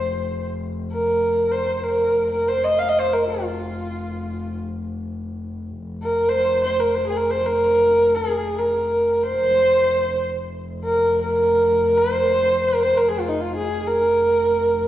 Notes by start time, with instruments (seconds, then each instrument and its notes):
Already playing: double bass F1, horsehead fiddle C5
0.92 horsehead fiddle A#4
1.51 horsehead fiddle C5
1.76 horsehead fiddle C5
1.84 horsehead fiddle A#4
2.15 double bass F1
2.30 horsehead fiddle A#4
2.48 horsehead fiddle C5
2.64 horsehead fiddle D#5
2.78 horsehead fiddle F5
2.89 horsehead fiddle D#5
2.99 horsehead fiddle C5
3.13 horsehead fiddle A#4
3.28 horsehead fiddle F4
5.78 double bass F1
6.03 horsehead fiddle A#4
6.29 horsehead fiddle C5
6.63 horsehead fiddle C5
6.80 horsehead fiddle A#4
6.95 horsehead fiddle C5
7.07 horsehead fiddle G#4
7.17 horsehead fiddle A#4
7.31 horsehead fiddle C5
7.46 horsehead fiddle A#4
8.15 horsehead fiddle G#4
8.59 horsehead fiddle A#4
9.23 horsehead fiddle C5
9.38 double bass F1
10.84 horsehead fiddle A#4
11.21 horsehead fiddle A#4
11.97 horsehead fiddle C5
12.68 horsehead fiddle A#4
12.83 horsehead fiddle C5
12.97 horsehead fiddle A#4
13.01 double bass F1
13.08 horsehead fiddle G#4
13.20 horsehead fiddle F4
13.28 horsehead fiddle D#4
13.40 horsehead fiddle F4
13.55 horsehead fiddle G#4
13.86 horsehead fiddle A#4